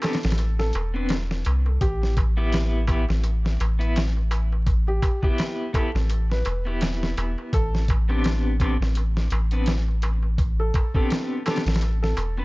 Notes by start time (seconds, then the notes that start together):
0.02 B3 C4 D4 G4 A4, snare, closed hi-hat, darbuka tek
0.13 snare, closed hi-hat
0.23 A1, snare, closed hi-hat, darbuka tek
0.30 snare, closed hi-hat
0.38 closed hi-hat, darbuka tek
0.59 A4, snare, darbuka tek
0.73 E1, closed hi-hat, darbuka tek
0.94 B3 C4 D4 B4, darbuka tek
1.09 snare, closed hi-hat, darbuka tek
1.31 snare, darbuka tek
1.45 C2, closed hi-hat, darbuka tek
1.66 darbuka tek
1.81 A1 G4, kick, closed hi-hat, darbuka tek
2.02 snare, darbuka tek
2.17 kick, closed hi-hat, darbuka tek
2.37 B3 E4 G4, darbuka tek
2.52 snare, closed hi-hat, darbuka tek
2.73 darbuka tek
2.87 B3 E4 G4, kick, closed hi-hat, darbuka tek
3.09 A1, snare, darbuka tek
3.24 closed hi-hat, darbuka tek
3.45 snare, darbuka tek
3.60 A1, closed hi-hat, darbuka tek
3.79 B3 E4 B4, closed hi-hat, darbuka tek
3.96 snare, closed hi-hat, darbuka tek
4.17 darbuka tek
4.31 closed hi-hat, darbuka tek
4.52 darbuka tek
4.67 kick, closed hi-hat, darbuka tek
4.87 G4, darbuka tek
5.02 kick, closed hi-hat, darbuka tek
5.22 B3 E4 G4, kick, darbuka tek
5.38 snare, closed hi-hat, darbuka tek
5.60 darbuka tek
5.73 B3 E4 G4 A4, kick, closed hi-hat, darbuka tek
5.94 A1, snare, darbuka tek
6.10 closed hi-hat, darbuka tek
6.30 B4, snare, darbuka tek
6.45 E1, closed hi-hat, darbuka tek
6.65 B3 E4 G4, darbuka tek
6.81 snare, closed hi-hat, darbuka tek
7.03 snare, darbuka tek
7.17 E1, closed hi-hat, darbuka tek
7.38 darbuka tek
7.53 A1 A4, kick, closed hi-hat, darbuka tek
7.74 snare, darbuka tek
7.88 kick, closed hi-hat, darbuka tek
8.09 B3 C4 D4 G4, darbuka tek
8.24 snare, closed hi-hat, darbuka tek
8.45 darbuka tek
8.60 B3 C4 D4 G4, kick, closed hi-hat, darbuka tek
8.80 A1, snare, darbuka tek
8.95 closed hi-hat, darbuka tek
9.16 snare, darbuka tek
9.30 A1, closed hi-hat, darbuka tek
9.51 B3 C4 D4 B4, closed hi-hat, darbuka tek
9.66 snare, closed hi-hat, darbuka tek
9.88 darbuka tek
10.02 closed hi-hat, darbuka tek
10.23 darbuka tek
10.38 kick, closed hi-hat, darbuka tek
10.60 A4, darbuka tek
10.74 kick, closed hi-hat, darbuka tek
10.95 B3 C4 D4 G4 A4, kick, darbuka tek
11.10 snare, closed hi-hat, darbuka tek
11.32 darbuka tek
11.46 B3 C4 D4 G4 A4, snare, closed hi-hat, darbuka tek
11.56 snare, closed hi-hat
11.66 A1, snare, closed hi-hat, darbuka tek
11.74 snare, closed hi-hat
11.81 closed hi-hat, darbuka tek
12.03 A4, snare, darbuka tek
12.17 E1, closed hi-hat, darbuka tek
12.37 B3 C4 D4 B4, darbuka tek